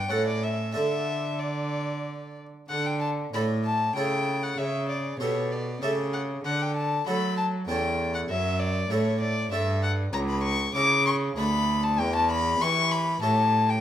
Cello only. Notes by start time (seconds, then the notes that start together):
Already playing: G2
0.12 A2
0.76 D3
2.70 D3
3.33 A2
3.96 C#3
4.58 C#3
5.21 B2
5.82 C#3
6.45 D3
7.07 F#3
7.69 E2
8.30 F#2
8.90 A2
9.52 G2
10.13 C#2
10.75 C#3
11.38 D2
11.99 E2
12.61 E3
13.22 A2